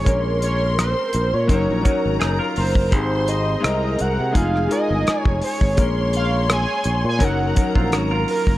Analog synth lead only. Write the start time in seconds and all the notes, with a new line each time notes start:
Already playing: C#5
0.43 C#5
0.80 C5
1.34 C#5
1.50 C#5
2.57 C5
3.29 D#5
4.01 F#5
4.37 F5
4.72 D#5
5.22 C#5
5.44 C#5
6.17 F5
6.52 G#5
7.09 G#5
7.24 F#5
8.31 A#4